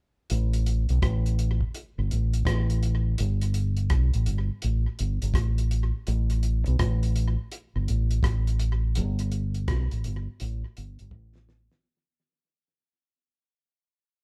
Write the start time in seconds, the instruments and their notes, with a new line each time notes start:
0.30 fingered electric bass A1, closed hi-hat
0.53 closed hi-hat
0.66 closed hi-hat
0.89 fingered electric bass B1, closed hi-hat
1.02 fingered electric bass A1, kick, cross-stick, closed hi-hat
1.26 closed hi-hat
1.39 closed hi-hat
1.61 kick
1.74 closed hi-hat
1.98 fingered electric bass G1
2.11 fingered electric bass A1, closed hi-hat
2.34 closed hi-hat
2.45 fingered electric bass A1, kick, cross-stick, closed hi-hat
2.70 closed hi-hat
2.83 closed hi-hat
3.18 fingered electric bass G1, closed hi-hat
3.42 closed hi-hat
3.54 closed hi-hat
3.77 closed hi-hat
3.90 fingered electric bass B1, kick, cross-stick, closed hi-hat
4.14 fingered electric bass A1, closed hi-hat
4.26 fingered electric bass G1, closed hi-hat
4.62 fingered electric bass A1, closed hi-hat
4.99 fingered electric bass G1, closed hi-hat
5.22 fingered electric bass G1, closed hi-hat
5.34 fingered electric bass A1, kick, cross-stick, closed hi-hat
5.58 closed hi-hat
5.71 closed hi-hat
6.07 fingered electric bass A1, closed hi-hat
6.30 closed hi-hat
6.43 closed hi-hat
6.66 fingered electric bass B1, closed hi-hat
6.79 fingered electric bass A1, kick, cross-stick, closed hi-hat
7.03 closed hi-hat
7.16 closed hi-hat
7.52 closed hi-hat
7.75 fingered electric bass G1
7.88 fingered electric bass A1, closed hi-hat
8.11 closed hi-hat
8.23 fingered electric bass A1, kick, cross-stick, closed hi-hat
8.47 closed hi-hat
8.60 closed hi-hat
8.95 fingered electric bass G1, closed hi-hat
9.19 closed hi-hat
9.32 closed hi-hat
9.54 closed hi-hat
9.68 fingered electric bass B1, kick, cross-stick, closed hi-hat
9.91 fingered electric bass A1, closed hi-hat
10.04 fingered electric bass G1, closed hi-hat
10.40 fingered electric bass A1, closed hi-hat
10.77 fingered electric bass G1, closed hi-hat
10.99 fingered electric bass G1, closed hi-hat
11.11 fingered electric bass A1, kick
11.36 snare
11.49 snare
11.72 snare